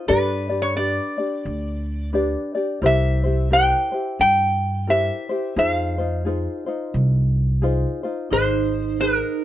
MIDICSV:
0, 0, Header, 1, 5, 480
1, 0, Start_track
1, 0, Tempo, 685714
1, 60, Time_signature, 4, 2, 24, 8
1, 6611, End_track
2, 0, Start_track
2, 0, Title_t, "Resonator guitar played with a steel bar"
2, 0, Program_c, 0, 25
2, 0, Note_on_c, 0, 75, 85
2, 58, Note_on_c, 0, 71, 88
2, 74, Note_off_c, 0, 75, 0
2, 431, Note_off_c, 0, 71, 0
2, 433, Note_on_c, 0, 73, 80
2, 533, Note_off_c, 0, 73, 0
2, 536, Note_on_c, 0, 74, 76
2, 1468, Note_off_c, 0, 74, 0
2, 2001, Note_on_c, 0, 76, 92
2, 2472, Note_on_c, 0, 79, 98
2, 2483, Note_off_c, 0, 76, 0
2, 2937, Note_off_c, 0, 79, 0
2, 2945, Note_on_c, 0, 79, 99
2, 3430, Note_on_c, 0, 76, 85
2, 3435, Note_off_c, 0, 79, 0
2, 3908, Note_off_c, 0, 76, 0
2, 3911, Note_on_c, 0, 77, 84
2, 5316, Note_off_c, 0, 77, 0
2, 5828, Note_on_c, 0, 72, 89
2, 6301, Note_off_c, 0, 72, 0
2, 6304, Note_on_c, 0, 70, 81
2, 6611, Note_off_c, 0, 70, 0
2, 6611, End_track
3, 0, Start_track
3, 0, Title_t, "Ukulele"
3, 0, Program_c, 1, 24
3, 55, Note_on_c, 1, 71, 75
3, 58, Note_on_c, 1, 62, 71
3, 59, Note_on_c, 1, 67, 74
3, 66, Note_on_c, 1, 74, 82
3, 338, Note_off_c, 1, 74, 0
3, 344, Note_off_c, 1, 67, 0
3, 345, Note_off_c, 1, 71, 0
3, 346, Note_on_c, 1, 74, 53
3, 347, Note_off_c, 1, 62, 0
3, 353, Note_on_c, 1, 67, 48
3, 358, Note_on_c, 1, 62, 42
3, 533, Note_off_c, 1, 62, 0
3, 536, Note_on_c, 1, 71, 52
3, 538, Note_off_c, 1, 67, 0
3, 538, Note_off_c, 1, 74, 0
3, 541, Note_on_c, 1, 62, 57
3, 547, Note_on_c, 1, 67, 57
3, 552, Note_on_c, 1, 74, 58
3, 816, Note_off_c, 1, 74, 0
3, 822, Note_off_c, 1, 67, 0
3, 825, Note_off_c, 1, 71, 0
3, 825, Note_on_c, 1, 74, 53
3, 828, Note_off_c, 1, 62, 0
3, 831, Note_on_c, 1, 67, 45
3, 836, Note_on_c, 1, 62, 42
3, 1485, Note_off_c, 1, 62, 0
3, 1490, Note_on_c, 1, 71, 63
3, 1494, Note_on_c, 1, 62, 67
3, 1497, Note_off_c, 1, 67, 0
3, 1497, Note_off_c, 1, 74, 0
3, 1499, Note_on_c, 1, 67, 69
3, 1504, Note_on_c, 1, 74, 71
3, 1774, Note_off_c, 1, 74, 0
3, 1780, Note_off_c, 1, 67, 0
3, 1781, Note_off_c, 1, 71, 0
3, 1782, Note_on_c, 1, 74, 57
3, 1783, Note_off_c, 1, 62, 0
3, 1788, Note_on_c, 1, 67, 49
3, 1797, Note_on_c, 1, 62, 49
3, 1972, Note_off_c, 1, 67, 0
3, 1973, Note_on_c, 1, 70, 81
3, 1974, Note_off_c, 1, 62, 0
3, 1976, Note_off_c, 1, 74, 0
3, 1977, Note_on_c, 1, 64, 77
3, 1981, Note_on_c, 1, 67, 77
3, 1982, Note_on_c, 1, 72, 84
3, 2256, Note_off_c, 1, 72, 0
3, 2263, Note_off_c, 1, 70, 0
3, 2264, Note_off_c, 1, 67, 0
3, 2265, Note_off_c, 1, 64, 0
3, 2265, Note_on_c, 1, 72, 60
3, 2273, Note_on_c, 1, 67, 55
3, 2282, Note_on_c, 1, 64, 44
3, 2452, Note_off_c, 1, 64, 0
3, 2452, Note_off_c, 1, 67, 0
3, 2455, Note_on_c, 1, 70, 57
3, 2457, Note_off_c, 1, 72, 0
3, 2461, Note_on_c, 1, 64, 55
3, 2462, Note_on_c, 1, 67, 64
3, 2469, Note_on_c, 1, 72, 66
3, 2734, Note_off_c, 1, 72, 0
3, 2743, Note_on_c, 1, 72, 49
3, 2744, Note_off_c, 1, 70, 0
3, 2745, Note_off_c, 1, 67, 0
3, 2747, Note_off_c, 1, 64, 0
3, 2753, Note_on_c, 1, 67, 47
3, 2758, Note_on_c, 1, 64, 38
3, 3409, Note_off_c, 1, 67, 0
3, 3410, Note_off_c, 1, 64, 0
3, 3411, Note_on_c, 1, 70, 59
3, 3418, Note_on_c, 1, 64, 52
3, 3423, Note_on_c, 1, 67, 61
3, 3424, Note_off_c, 1, 72, 0
3, 3427, Note_on_c, 1, 72, 67
3, 3696, Note_off_c, 1, 72, 0
3, 3702, Note_off_c, 1, 70, 0
3, 3704, Note_off_c, 1, 67, 0
3, 3705, Note_off_c, 1, 64, 0
3, 3705, Note_on_c, 1, 72, 54
3, 3713, Note_on_c, 1, 67, 44
3, 3718, Note_on_c, 1, 64, 41
3, 3892, Note_off_c, 1, 67, 0
3, 3895, Note_on_c, 1, 68, 71
3, 3897, Note_off_c, 1, 72, 0
3, 3899, Note_off_c, 1, 64, 0
3, 3899, Note_on_c, 1, 63, 77
3, 3902, Note_on_c, 1, 65, 73
3, 3906, Note_on_c, 1, 72, 82
3, 4178, Note_off_c, 1, 72, 0
3, 4184, Note_off_c, 1, 68, 0
3, 4186, Note_off_c, 1, 63, 0
3, 4187, Note_off_c, 1, 65, 0
3, 4187, Note_on_c, 1, 72, 56
3, 4194, Note_on_c, 1, 65, 46
3, 4200, Note_on_c, 1, 63, 47
3, 4374, Note_off_c, 1, 63, 0
3, 4374, Note_on_c, 1, 68, 52
3, 4375, Note_off_c, 1, 65, 0
3, 4378, Note_off_c, 1, 72, 0
3, 4383, Note_on_c, 1, 63, 61
3, 4383, Note_on_c, 1, 65, 54
3, 4390, Note_on_c, 1, 72, 59
3, 4656, Note_off_c, 1, 72, 0
3, 4661, Note_off_c, 1, 65, 0
3, 4663, Note_off_c, 1, 68, 0
3, 4664, Note_on_c, 1, 72, 52
3, 4668, Note_off_c, 1, 63, 0
3, 4669, Note_on_c, 1, 65, 49
3, 4677, Note_on_c, 1, 63, 43
3, 5332, Note_on_c, 1, 68, 64
3, 5334, Note_off_c, 1, 65, 0
3, 5336, Note_off_c, 1, 63, 0
3, 5339, Note_on_c, 1, 63, 64
3, 5342, Note_on_c, 1, 65, 65
3, 5344, Note_off_c, 1, 72, 0
3, 5347, Note_on_c, 1, 72, 67
3, 5614, Note_off_c, 1, 72, 0
3, 5622, Note_off_c, 1, 65, 0
3, 5622, Note_on_c, 1, 72, 50
3, 5623, Note_off_c, 1, 68, 0
3, 5626, Note_off_c, 1, 63, 0
3, 5630, Note_on_c, 1, 65, 46
3, 5636, Note_on_c, 1, 63, 41
3, 5813, Note_off_c, 1, 63, 0
3, 5816, Note_off_c, 1, 72, 0
3, 5818, Note_on_c, 1, 70, 72
3, 5820, Note_off_c, 1, 65, 0
3, 5821, Note_on_c, 1, 63, 74
3, 5823, Note_on_c, 1, 68, 81
3, 5826, Note_on_c, 1, 72, 75
3, 6290, Note_off_c, 1, 70, 0
3, 6298, Note_on_c, 1, 70, 56
3, 6300, Note_off_c, 1, 63, 0
3, 6303, Note_off_c, 1, 72, 0
3, 6303, Note_on_c, 1, 63, 60
3, 6306, Note_off_c, 1, 68, 0
3, 6308, Note_on_c, 1, 68, 53
3, 6310, Note_on_c, 1, 72, 56
3, 6611, Note_off_c, 1, 63, 0
3, 6611, Note_off_c, 1, 68, 0
3, 6611, Note_off_c, 1, 70, 0
3, 6611, Note_off_c, 1, 72, 0
3, 6611, End_track
4, 0, Start_track
4, 0, Title_t, "Vibraphone"
4, 0, Program_c, 2, 11
4, 5814, Note_on_c, 2, 63, 69
4, 6269, Note_off_c, 2, 63, 0
4, 6302, Note_on_c, 2, 63, 58
4, 6611, Note_off_c, 2, 63, 0
4, 6611, End_track
5, 0, Start_track
5, 0, Title_t, "Upright bass"
5, 0, Program_c, 3, 32
5, 65, Note_on_c, 3, 43, 83
5, 686, Note_off_c, 3, 43, 0
5, 1018, Note_on_c, 3, 38, 93
5, 1641, Note_off_c, 3, 38, 0
5, 1972, Note_on_c, 3, 36, 90
5, 2597, Note_off_c, 3, 36, 0
5, 2936, Note_on_c, 3, 43, 90
5, 3560, Note_off_c, 3, 43, 0
5, 3894, Note_on_c, 3, 41, 87
5, 4519, Note_off_c, 3, 41, 0
5, 4859, Note_on_c, 3, 36, 94
5, 5483, Note_off_c, 3, 36, 0
5, 5821, Note_on_c, 3, 32, 84
5, 6445, Note_off_c, 3, 32, 0
5, 6611, End_track
0, 0, End_of_file